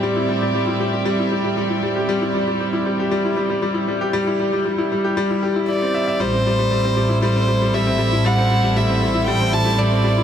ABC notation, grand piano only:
X:1
M:4/4
L:1/16
Q:1/4=117
K:Am
V:1 name="Grand piano" clef=bass
G, E G, G, G, E G, G G, E G, G, G, E G, G | G, E G, G, G, E G, G G, E G, G, G, E G, G | G, E G, G, G, E G, G G, E G E E C e e | G, C G, G, G, C G, E G, C G, G, G, C G, E |
G, C G, G, G, C G, E G, C G, G, G, C G, E |]